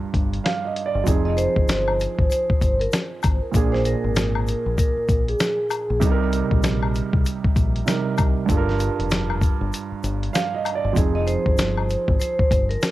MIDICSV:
0, 0, Header, 1, 6, 480
1, 0, Start_track
1, 0, Tempo, 618557
1, 826, Time_signature, 4, 2, 24, 8
1, 10020, End_track
2, 0, Start_track
2, 0, Title_t, "Vibraphone"
2, 0, Program_c, 0, 11
2, 973, Note_on_c, 0, 75, 83
2, 1056, Note_off_c, 0, 75, 0
2, 1062, Note_on_c, 0, 72, 86
2, 1753, Note_off_c, 0, 72, 0
2, 1784, Note_on_c, 0, 72, 89
2, 2151, Note_off_c, 0, 72, 0
2, 2169, Note_on_c, 0, 70, 81
2, 2254, Note_off_c, 0, 70, 0
2, 2889, Note_on_c, 0, 72, 74
2, 2974, Note_off_c, 0, 72, 0
2, 2992, Note_on_c, 0, 70, 84
2, 3678, Note_off_c, 0, 70, 0
2, 3707, Note_on_c, 0, 70, 83
2, 4072, Note_off_c, 0, 70, 0
2, 4106, Note_on_c, 0, 68, 82
2, 4640, Note_off_c, 0, 68, 0
2, 8653, Note_on_c, 0, 75, 83
2, 8736, Note_off_c, 0, 75, 0
2, 8743, Note_on_c, 0, 72, 85
2, 9434, Note_off_c, 0, 72, 0
2, 9464, Note_on_c, 0, 72, 86
2, 9831, Note_off_c, 0, 72, 0
2, 9850, Note_on_c, 0, 70, 83
2, 9934, Note_off_c, 0, 70, 0
2, 10020, End_track
3, 0, Start_track
3, 0, Title_t, "Grand piano"
3, 0, Program_c, 1, 0
3, 0, Control_c, 1, 64, 127
3, 0, Note_on_c, 1, 43, 80
3, 0, Note_on_c, 1, 55, 73
3, 0, Note_on_c, 1, 65, 67
3, 0, Note_on_c, 1, 70, 84
3, 342, Note_on_c, 1, 77, 75
3, 493, Note_off_c, 1, 77, 0
3, 505, Note_on_c, 1, 75, 68
3, 655, Note_off_c, 1, 75, 0
3, 666, Note_on_c, 1, 74, 75
3, 783, Note_off_c, 1, 43, 0
3, 789, Note_off_c, 1, 55, 0
3, 796, Note_off_c, 1, 65, 0
3, 805, Note_on_c, 1, 53, 75
3, 815, Note_off_c, 1, 74, 0
3, 816, Note_on_c, 1, 60, 65
3, 827, Note_off_c, 1, 70, 0
3, 829, Note_on_c, 1, 63, 61
3, 836, Control_c, 1, 64, 0
3, 842, Note_on_c, 1, 68, 75
3, 964, Control_c, 1, 64, 127
3, 2705, Note_off_c, 1, 53, 0
3, 2710, Note_off_c, 1, 60, 0
3, 2717, Note_off_c, 1, 63, 0
3, 2723, Note_off_c, 1, 68, 0
3, 2728, Note_on_c, 1, 46, 70
3, 2741, Note_on_c, 1, 58, 62
3, 2753, Note_on_c, 1, 62, 63
3, 2757, Control_c, 1, 64, 0
3, 2766, Note_on_c, 1, 68, 79
3, 2870, Control_c, 1, 64, 127
3, 4626, Note_off_c, 1, 46, 0
3, 4632, Note_off_c, 1, 58, 0
3, 4639, Note_off_c, 1, 62, 0
3, 4645, Note_off_c, 1, 68, 0
3, 4655, Note_on_c, 1, 48, 86
3, 4668, Note_on_c, 1, 55, 81
3, 4676, Control_c, 1, 64, 0
3, 4681, Note_on_c, 1, 63, 74
3, 4694, Note_on_c, 1, 69, 71
3, 4743, Note_off_c, 1, 69, 0
3, 4743, Note_on_c, 1, 70, 93
3, 4813, Control_c, 1, 64, 127
3, 6072, Note_off_c, 1, 48, 0
3, 6079, Note_off_c, 1, 55, 0
3, 6085, Note_off_c, 1, 63, 0
3, 6095, Note_on_c, 1, 48, 62
3, 6101, Note_off_c, 1, 70, 0
3, 6101, Note_on_c, 1, 55, 58
3, 6108, Note_on_c, 1, 63, 56
3, 6113, Note_on_c, 1, 70, 72
3, 6562, Note_on_c, 1, 43, 84
3, 6563, Note_off_c, 1, 55, 0
3, 6575, Note_on_c, 1, 55, 74
3, 6581, Note_off_c, 1, 48, 0
3, 6586, Note_on_c, 1, 65, 73
3, 6587, Note_off_c, 1, 63, 0
3, 6590, Note_off_c, 1, 70, 0
3, 6597, Control_c, 1, 64, 0
3, 6599, Note_on_c, 1, 69, 76
3, 6650, Note_on_c, 1, 70, 88
3, 6656, Note_off_c, 1, 69, 0
3, 6742, Control_c, 1, 64, 127
3, 8018, Note_on_c, 1, 77, 77
3, 8171, Note_off_c, 1, 77, 0
3, 8184, Note_on_c, 1, 75, 74
3, 8334, Note_off_c, 1, 75, 0
3, 8345, Note_on_c, 1, 74, 74
3, 8463, Note_off_c, 1, 43, 0
3, 8469, Note_off_c, 1, 55, 0
3, 8475, Note_off_c, 1, 65, 0
3, 8482, Note_on_c, 1, 53, 75
3, 8494, Note_on_c, 1, 60, 66
3, 8495, Note_off_c, 1, 74, 0
3, 8507, Note_off_c, 1, 70, 0
3, 8507, Note_on_c, 1, 63, 61
3, 8518, Control_c, 1, 64, 0
3, 8520, Note_on_c, 1, 68, 76
3, 8639, Control_c, 1, 64, 127
3, 10020, Note_off_c, 1, 53, 0
3, 10020, Note_off_c, 1, 60, 0
3, 10020, Note_off_c, 1, 63, 0
3, 10020, Note_off_c, 1, 68, 0
3, 10020, End_track
4, 0, Start_track
4, 0, Title_t, "Fingered electric bass"
4, 0, Program_c, 2, 33
4, 109, Note_on_c, 2, 31, 92
4, 297, Note_off_c, 2, 31, 0
4, 737, Note_on_c, 2, 31, 93
4, 808, Note_off_c, 2, 31, 0
4, 829, Note_on_c, 2, 29, 102
4, 1134, Note_off_c, 2, 29, 0
4, 1214, Note_on_c, 2, 31, 89
4, 1592, Note_off_c, 2, 31, 0
4, 1697, Note_on_c, 2, 32, 89
4, 1768, Note_off_c, 2, 32, 0
4, 2030, Note_on_c, 2, 31, 93
4, 2217, Note_off_c, 2, 31, 0
4, 2517, Note_on_c, 2, 32, 94
4, 2630, Note_off_c, 2, 32, 0
4, 2750, Note_on_c, 2, 34, 113
4, 3054, Note_off_c, 2, 34, 0
4, 3136, Note_on_c, 2, 32, 92
4, 3514, Note_off_c, 2, 32, 0
4, 3617, Note_on_c, 2, 34, 91
4, 3688, Note_off_c, 2, 34, 0
4, 3949, Note_on_c, 2, 34, 98
4, 4136, Note_off_c, 2, 34, 0
4, 4578, Note_on_c, 2, 34, 98
4, 4669, Note_off_c, 2, 34, 0
4, 4669, Note_on_c, 2, 36, 106
4, 4974, Note_off_c, 2, 36, 0
4, 5055, Note_on_c, 2, 34, 87
4, 5433, Note_off_c, 2, 34, 0
4, 5535, Note_on_c, 2, 36, 86
4, 5607, Note_off_c, 2, 36, 0
4, 5868, Note_on_c, 2, 34, 91
4, 6056, Note_off_c, 2, 34, 0
4, 6356, Note_on_c, 2, 36, 88
4, 6470, Note_off_c, 2, 36, 0
4, 6588, Note_on_c, 2, 31, 109
4, 6894, Note_off_c, 2, 31, 0
4, 6975, Note_on_c, 2, 29, 91
4, 7353, Note_off_c, 2, 29, 0
4, 7457, Note_on_c, 2, 31, 88
4, 7528, Note_off_c, 2, 31, 0
4, 7788, Note_on_c, 2, 31, 93
4, 7976, Note_off_c, 2, 31, 0
4, 8417, Note_on_c, 2, 31, 97
4, 8488, Note_off_c, 2, 31, 0
4, 8509, Note_on_c, 2, 29, 101
4, 8814, Note_off_c, 2, 29, 0
4, 8894, Note_on_c, 2, 31, 91
4, 9272, Note_off_c, 2, 31, 0
4, 9376, Note_on_c, 2, 32, 88
4, 9447, Note_off_c, 2, 32, 0
4, 9710, Note_on_c, 2, 31, 97
4, 9897, Note_off_c, 2, 31, 0
4, 10020, End_track
5, 0, Start_track
5, 0, Title_t, "Muted fingered electric bass strokes"
5, 18, Note_on_c, 9, 29, 46
5, 95, Note_off_c, 9, 29, 0
5, 1939, Note_on_c, 9, 29, 49
5, 2017, Note_off_c, 9, 29, 0
5, 3857, Note_on_c, 9, 29, 51
5, 3935, Note_off_c, 9, 29, 0
5, 5778, Note_on_c, 9, 29, 50
5, 5856, Note_off_c, 9, 29, 0
5, 7697, Note_on_c, 9, 29, 49
5, 7774, Note_off_c, 9, 29, 0
5, 9619, Note_on_c, 9, 29, 48
5, 9697, Note_off_c, 9, 29, 0
5, 10020, End_track
6, 0, Start_track
6, 0, Title_t, "Drums"
6, 107, Note_on_c, 9, 36, 88
6, 111, Note_on_c, 9, 42, 76
6, 185, Note_off_c, 9, 36, 0
6, 188, Note_off_c, 9, 42, 0
6, 260, Note_on_c, 9, 42, 50
6, 337, Note_off_c, 9, 42, 0
6, 354, Note_on_c, 9, 40, 101
6, 355, Note_on_c, 9, 42, 94
6, 356, Note_on_c, 9, 38, 123
6, 432, Note_off_c, 9, 40, 0
6, 433, Note_off_c, 9, 38, 0
6, 433, Note_off_c, 9, 42, 0
6, 592, Note_on_c, 9, 42, 82
6, 670, Note_off_c, 9, 42, 0
6, 827, Note_on_c, 9, 82, 78
6, 828, Note_on_c, 9, 36, 110
6, 834, Note_on_c, 9, 42, 95
6, 905, Note_off_c, 9, 82, 0
6, 906, Note_off_c, 9, 36, 0
6, 912, Note_off_c, 9, 42, 0
6, 1067, Note_on_c, 9, 82, 47
6, 1071, Note_on_c, 9, 42, 86
6, 1145, Note_off_c, 9, 82, 0
6, 1148, Note_off_c, 9, 42, 0
6, 1214, Note_on_c, 9, 36, 98
6, 1291, Note_off_c, 9, 36, 0
6, 1304, Note_on_c, 9, 82, 75
6, 1312, Note_on_c, 9, 42, 106
6, 1314, Note_on_c, 9, 40, 96
6, 1316, Note_on_c, 9, 38, 116
6, 1381, Note_off_c, 9, 82, 0
6, 1390, Note_off_c, 9, 42, 0
6, 1392, Note_off_c, 9, 40, 0
6, 1393, Note_off_c, 9, 38, 0
6, 1457, Note_on_c, 9, 76, 67
6, 1534, Note_off_c, 9, 76, 0
6, 1550, Note_on_c, 9, 82, 50
6, 1561, Note_on_c, 9, 42, 72
6, 1628, Note_off_c, 9, 82, 0
6, 1638, Note_off_c, 9, 42, 0
6, 1696, Note_on_c, 9, 36, 99
6, 1774, Note_off_c, 9, 36, 0
6, 1790, Note_on_c, 9, 82, 71
6, 1801, Note_on_c, 9, 42, 99
6, 1868, Note_off_c, 9, 82, 0
6, 1878, Note_off_c, 9, 42, 0
6, 1939, Note_on_c, 9, 36, 98
6, 2016, Note_off_c, 9, 36, 0
6, 2029, Note_on_c, 9, 36, 88
6, 2029, Note_on_c, 9, 82, 55
6, 2034, Note_on_c, 9, 42, 79
6, 2106, Note_off_c, 9, 36, 0
6, 2106, Note_off_c, 9, 82, 0
6, 2111, Note_off_c, 9, 42, 0
6, 2181, Note_on_c, 9, 42, 51
6, 2259, Note_off_c, 9, 42, 0
6, 2265, Note_on_c, 9, 82, 70
6, 2276, Note_on_c, 9, 40, 107
6, 2277, Note_on_c, 9, 38, 127
6, 2277, Note_on_c, 9, 42, 99
6, 2343, Note_off_c, 9, 82, 0
6, 2353, Note_off_c, 9, 40, 0
6, 2355, Note_off_c, 9, 38, 0
6, 2355, Note_off_c, 9, 42, 0
6, 2505, Note_on_c, 9, 76, 71
6, 2505, Note_on_c, 9, 82, 48
6, 2513, Note_on_c, 9, 42, 86
6, 2516, Note_on_c, 9, 36, 98
6, 2583, Note_off_c, 9, 76, 0
6, 2583, Note_off_c, 9, 82, 0
6, 2590, Note_off_c, 9, 42, 0
6, 2594, Note_off_c, 9, 36, 0
6, 2747, Note_on_c, 9, 82, 79
6, 2748, Note_on_c, 9, 36, 108
6, 2754, Note_on_c, 9, 42, 97
6, 2825, Note_off_c, 9, 82, 0
6, 2826, Note_off_c, 9, 36, 0
6, 2832, Note_off_c, 9, 42, 0
6, 2906, Note_on_c, 9, 38, 38
6, 2983, Note_off_c, 9, 38, 0
6, 2986, Note_on_c, 9, 82, 47
6, 2991, Note_on_c, 9, 42, 86
6, 3064, Note_off_c, 9, 82, 0
6, 3068, Note_off_c, 9, 42, 0
6, 3225, Note_on_c, 9, 82, 72
6, 3231, Note_on_c, 9, 42, 106
6, 3233, Note_on_c, 9, 40, 96
6, 3235, Note_on_c, 9, 38, 116
6, 3302, Note_off_c, 9, 82, 0
6, 3309, Note_off_c, 9, 42, 0
6, 3311, Note_off_c, 9, 40, 0
6, 3312, Note_off_c, 9, 38, 0
6, 3378, Note_on_c, 9, 76, 71
6, 3455, Note_off_c, 9, 76, 0
6, 3470, Note_on_c, 9, 82, 51
6, 3481, Note_on_c, 9, 42, 75
6, 3548, Note_off_c, 9, 82, 0
6, 3559, Note_off_c, 9, 42, 0
6, 3710, Note_on_c, 9, 36, 100
6, 3710, Note_on_c, 9, 82, 74
6, 3718, Note_on_c, 9, 42, 101
6, 3788, Note_off_c, 9, 36, 0
6, 3788, Note_off_c, 9, 82, 0
6, 3796, Note_off_c, 9, 42, 0
6, 3946, Note_on_c, 9, 82, 56
6, 3948, Note_on_c, 9, 36, 88
6, 3952, Note_on_c, 9, 42, 78
6, 4024, Note_off_c, 9, 82, 0
6, 4025, Note_off_c, 9, 36, 0
6, 4029, Note_off_c, 9, 42, 0
6, 4101, Note_on_c, 9, 42, 49
6, 4178, Note_off_c, 9, 42, 0
6, 4186, Note_on_c, 9, 82, 71
6, 4193, Note_on_c, 9, 40, 106
6, 4194, Note_on_c, 9, 38, 126
6, 4194, Note_on_c, 9, 42, 96
6, 4264, Note_off_c, 9, 82, 0
6, 4271, Note_off_c, 9, 40, 0
6, 4272, Note_off_c, 9, 38, 0
6, 4272, Note_off_c, 9, 42, 0
6, 4426, Note_on_c, 9, 76, 72
6, 4426, Note_on_c, 9, 82, 49
6, 4432, Note_on_c, 9, 42, 84
6, 4504, Note_off_c, 9, 76, 0
6, 4504, Note_off_c, 9, 82, 0
6, 4509, Note_off_c, 9, 42, 0
6, 4668, Note_on_c, 9, 36, 110
6, 4668, Note_on_c, 9, 82, 78
6, 4674, Note_on_c, 9, 42, 92
6, 4745, Note_off_c, 9, 36, 0
6, 4746, Note_off_c, 9, 82, 0
6, 4752, Note_off_c, 9, 42, 0
6, 4908, Note_on_c, 9, 82, 47
6, 4910, Note_on_c, 9, 42, 84
6, 4986, Note_off_c, 9, 82, 0
6, 4988, Note_off_c, 9, 42, 0
6, 5053, Note_on_c, 9, 36, 103
6, 5130, Note_off_c, 9, 36, 0
6, 5144, Note_on_c, 9, 82, 73
6, 5150, Note_on_c, 9, 42, 106
6, 5152, Note_on_c, 9, 40, 94
6, 5153, Note_on_c, 9, 38, 120
6, 5221, Note_off_c, 9, 82, 0
6, 5228, Note_off_c, 9, 42, 0
6, 5230, Note_off_c, 9, 40, 0
6, 5231, Note_off_c, 9, 38, 0
6, 5297, Note_on_c, 9, 76, 67
6, 5374, Note_off_c, 9, 76, 0
6, 5391, Note_on_c, 9, 82, 51
6, 5398, Note_on_c, 9, 42, 73
6, 5468, Note_off_c, 9, 82, 0
6, 5476, Note_off_c, 9, 42, 0
6, 5534, Note_on_c, 9, 36, 99
6, 5612, Note_off_c, 9, 36, 0
6, 5630, Note_on_c, 9, 82, 74
6, 5636, Note_on_c, 9, 42, 101
6, 5708, Note_off_c, 9, 82, 0
6, 5713, Note_off_c, 9, 42, 0
6, 5777, Note_on_c, 9, 36, 97
6, 5854, Note_off_c, 9, 36, 0
6, 5867, Note_on_c, 9, 36, 93
6, 5867, Note_on_c, 9, 82, 54
6, 5870, Note_on_c, 9, 42, 80
6, 5944, Note_off_c, 9, 82, 0
6, 5945, Note_off_c, 9, 36, 0
6, 5948, Note_off_c, 9, 42, 0
6, 6020, Note_on_c, 9, 42, 51
6, 6097, Note_off_c, 9, 42, 0
6, 6107, Note_on_c, 9, 82, 70
6, 6113, Note_on_c, 9, 40, 108
6, 6114, Note_on_c, 9, 38, 127
6, 6114, Note_on_c, 9, 42, 100
6, 6185, Note_off_c, 9, 82, 0
6, 6191, Note_off_c, 9, 40, 0
6, 6192, Note_off_c, 9, 38, 0
6, 6192, Note_off_c, 9, 42, 0
6, 6346, Note_on_c, 9, 76, 72
6, 6346, Note_on_c, 9, 82, 49
6, 6350, Note_on_c, 9, 42, 82
6, 6355, Note_on_c, 9, 36, 96
6, 6424, Note_off_c, 9, 76, 0
6, 6424, Note_off_c, 9, 82, 0
6, 6427, Note_off_c, 9, 42, 0
6, 6432, Note_off_c, 9, 36, 0
6, 6587, Note_on_c, 9, 36, 104
6, 6588, Note_on_c, 9, 82, 81
6, 6593, Note_on_c, 9, 42, 96
6, 6665, Note_off_c, 9, 36, 0
6, 6665, Note_off_c, 9, 82, 0
6, 6670, Note_off_c, 9, 42, 0
6, 6744, Note_on_c, 9, 38, 37
6, 6822, Note_off_c, 9, 38, 0
6, 6826, Note_on_c, 9, 82, 49
6, 6830, Note_on_c, 9, 42, 87
6, 6904, Note_off_c, 9, 82, 0
6, 6907, Note_off_c, 9, 42, 0
6, 6982, Note_on_c, 9, 42, 59
6, 7059, Note_off_c, 9, 42, 0
6, 7063, Note_on_c, 9, 82, 74
6, 7072, Note_on_c, 9, 42, 111
6, 7074, Note_on_c, 9, 40, 92
6, 7076, Note_on_c, 9, 38, 116
6, 7141, Note_off_c, 9, 82, 0
6, 7150, Note_off_c, 9, 42, 0
6, 7152, Note_off_c, 9, 40, 0
6, 7153, Note_off_c, 9, 38, 0
6, 7216, Note_on_c, 9, 76, 69
6, 7293, Note_off_c, 9, 76, 0
6, 7305, Note_on_c, 9, 36, 97
6, 7307, Note_on_c, 9, 82, 51
6, 7319, Note_on_c, 9, 42, 70
6, 7383, Note_off_c, 9, 36, 0
6, 7385, Note_off_c, 9, 82, 0
6, 7397, Note_off_c, 9, 42, 0
6, 7550, Note_on_c, 9, 82, 74
6, 7558, Note_on_c, 9, 42, 103
6, 7627, Note_off_c, 9, 82, 0
6, 7635, Note_off_c, 9, 42, 0
6, 7788, Note_on_c, 9, 82, 54
6, 7792, Note_on_c, 9, 42, 75
6, 7865, Note_off_c, 9, 82, 0
6, 7869, Note_off_c, 9, 42, 0
6, 7939, Note_on_c, 9, 42, 51
6, 8017, Note_off_c, 9, 42, 0
6, 8026, Note_on_c, 9, 82, 74
6, 8034, Note_on_c, 9, 40, 106
6, 8035, Note_on_c, 9, 38, 121
6, 8035, Note_on_c, 9, 42, 94
6, 8104, Note_off_c, 9, 82, 0
6, 8112, Note_off_c, 9, 40, 0
6, 8113, Note_off_c, 9, 38, 0
6, 8113, Note_off_c, 9, 42, 0
6, 8266, Note_on_c, 9, 76, 69
6, 8266, Note_on_c, 9, 82, 49
6, 8273, Note_on_c, 9, 42, 84
6, 8344, Note_off_c, 9, 76, 0
6, 8344, Note_off_c, 9, 82, 0
6, 8351, Note_off_c, 9, 42, 0
6, 8507, Note_on_c, 9, 82, 77
6, 8508, Note_on_c, 9, 36, 111
6, 8514, Note_on_c, 9, 42, 98
6, 8585, Note_off_c, 9, 36, 0
6, 8585, Note_off_c, 9, 82, 0
6, 8591, Note_off_c, 9, 42, 0
6, 8746, Note_on_c, 9, 82, 48
6, 8750, Note_on_c, 9, 42, 84
6, 8824, Note_off_c, 9, 82, 0
6, 8828, Note_off_c, 9, 42, 0
6, 8893, Note_on_c, 9, 36, 100
6, 8971, Note_off_c, 9, 36, 0
6, 8984, Note_on_c, 9, 82, 76
6, 8992, Note_on_c, 9, 42, 108
6, 8994, Note_on_c, 9, 40, 97
6, 8995, Note_on_c, 9, 38, 120
6, 9061, Note_off_c, 9, 82, 0
6, 9070, Note_off_c, 9, 42, 0
6, 9072, Note_off_c, 9, 40, 0
6, 9073, Note_off_c, 9, 38, 0
6, 9137, Note_on_c, 9, 76, 69
6, 9215, Note_off_c, 9, 76, 0
6, 9230, Note_on_c, 9, 82, 51
6, 9240, Note_on_c, 9, 42, 74
6, 9307, Note_off_c, 9, 82, 0
6, 9318, Note_off_c, 9, 42, 0
6, 9375, Note_on_c, 9, 36, 101
6, 9453, Note_off_c, 9, 36, 0
6, 9471, Note_on_c, 9, 82, 74
6, 9480, Note_on_c, 9, 42, 100
6, 9548, Note_off_c, 9, 82, 0
6, 9558, Note_off_c, 9, 42, 0
6, 9618, Note_on_c, 9, 36, 99
6, 9695, Note_off_c, 9, 36, 0
6, 9708, Note_on_c, 9, 36, 93
6, 9709, Note_on_c, 9, 82, 54
6, 9713, Note_on_c, 9, 42, 79
6, 9786, Note_off_c, 9, 36, 0
6, 9786, Note_off_c, 9, 82, 0
6, 9791, Note_off_c, 9, 42, 0
6, 9861, Note_on_c, 9, 42, 51
6, 9939, Note_off_c, 9, 42, 0
6, 9947, Note_on_c, 9, 82, 74
6, 9954, Note_on_c, 9, 40, 107
6, 9956, Note_on_c, 9, 38, 127
6, 9956, Note_on_c, 9, 42, 97
6, 10020, Note_off_c, 9, 38, 0
6, 10020, Note_off_c, 9, 40, 0
6, 10020, Note_off_c, 9, 42, 0
6, 10020, Note_off_c, 9, 82, 0
6, 10020, End_track
0, 0, End_of_file